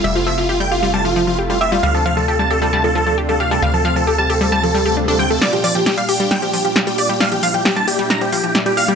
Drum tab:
HH |----------------|----------------|----------------|xxoxxxoxxxoxxxox|
SD |----------------|----------------|----------------|o---o---o---o---|

HH |xxoxxxoxxxoxxxox|
SD |o---o---o---o---|